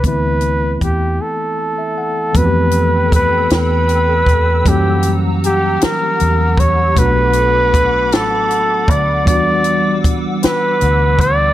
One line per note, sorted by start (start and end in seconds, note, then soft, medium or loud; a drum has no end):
0.02 0.77 D2 medium
0.02 2.30 E3 medium
0.02 2.31 A3 soft
0.02 2.31 B3 soft
0.02 kick medium
0.02 closed hi-hat medium
0.06 2.32 C4 medium
0.06 2.33 E4 medium
0.06 0.78 B4 medium
0.41 closed hi-hat soft
0.81 1.18 E2 medium
0.81 1.23 G4 medium
0.81 kick medium
0.81 closed hi-hat soft
1.21 2.38 A4 medium
1.59 1.76 A5 medium
1.78 1.96 E5 medium
1.98 2.33 F#5 medium
2.33 3.46 F2 medium
2.33 4.61 E3 medium
2.33 4.61 A3 medium
2.33 4.62 B3 medium
2.33 4.63 A4 loud
2.33 3.13 B4 medium
2.33 4.64 G5 medium
2.33 4.64 B5 medium
2.33 6.92 E6 loud
2.33 kick loud
2.33 closed hi-hat medium
2.38 4.63 C4 medium
2.38 2.43 F#4 medium
2.45 4.67 G4 medium
2.71 closed hi-hat medium
3.12 3.49 B4 medium
3.12 kick loud
3.12 closed hi-hat medium
3.50 4.24 E2 loud
3.50 4.70 B4 medium
3.50 snare loud
3.50 closed hi-hat medium
3.89 closed hi-hat soft
4.26 4.62 E2 loud
4.26 kick medium
4.26 closed hi-hat soft
4.64 5.77 F#2 loud
4.64 6.92 E3 medium
4.64 6.92 G3 medium
4.64 6.93 A#3 medium
4.64 6.94 C#4 medium
4.64 6.94 G4 medium
4.64 11.53 F#5 medium
4.64 6.94 A#5 medium
4.64 kick loud
4.64 closed hi-hat medium
4.68 6.94 F#3 medium
4.68 5.17 G4 medium
5.03 closed hi-hat medium
5.44 5.85 G4 medium
5.44 closed hi-hat medium
5.81 6.61 A#4 medium
5.81 muted fingered electric bass stroke medium
5.81 snare loud
5.81 closed hi-hat medium
6.20 6.93 E2 medium
6.20 closed hi-hat medium
6.57 7.00 C#5 medium
6.57 kick loud
6.57 closed hi-hat soft
6.95 8.13 B1 medium
6.95 9.23 F#3 medium
6.95 9.23 A3 medium
6.95 9.24 B3 medium
6.95 9.24 D4 medium
6.95 9.25 A4 loud
6.95 8.15 B4 loud
6.95 9.25 B5 medium
6.95 9.25 D6 loud
6.95 kick loud
6.95 closed hi-hat medium
7.00 9.25 F#4 medium
7.33 closed hi-hat medium
7.74 kick medium
7.74 closed hi-hat medium
8.12 8.89 A1 loud
8.12 8.92 A4 loud
8.12 snare loud
8.12 closed hi-hat medium
8.50 closed hi-hat soft
8.88 9.28 D2 loud
8.88 9.27 D5 medium
8.88 kick loud
8.88 closed hi-hat soft
9.25 10.39 E2 loud
9.25 11.53 E3 medium
9.25 11.53 G3 medium
9.25 11.53 B3 medium
9.25 11.53 D4 medium
9.25 10.12 D5 loud
9.25 11.53 D6 medium
9.25 11.53 E6 loud
9.25 kick loud
9.25 closed hi-hat medium
9.30 11.53 F#4 medium
9.64 closed hi-hat medium
10.04 kick loud
10.04 closed hi-hat medium
10.43 11.22 B4 loud
10.43 muted fingered electric bass stroke medium
10.43 snare loud
10.43 closed hi-hat medium
10.81 11.53 D2 medium
10.81 closed hi-hat medium
11.19 11.53 D5 loud
11.19 kick loud
11.19 closed hi-hat soft